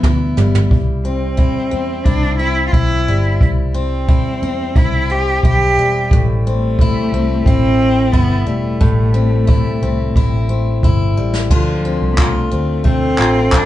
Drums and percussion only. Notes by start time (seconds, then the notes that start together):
0.03 kick, mid tom
0.38 floor tom
0.55 floor tom
0.71 kick
1.39 kick
2.06 kick
2.73 kick
3.41 kick
4.09 kick
4.76 kick
5.43 kick
6.11 kick
6.79 kick
7.46 kick
8.13 kick
8.81 kick
9.49 kick
10.16 kick
10.83 kick
11.33 snare
11.51 kick, crash
12.18 kick, clap
12.85 kick
13.18 clap
13.52 kick, clap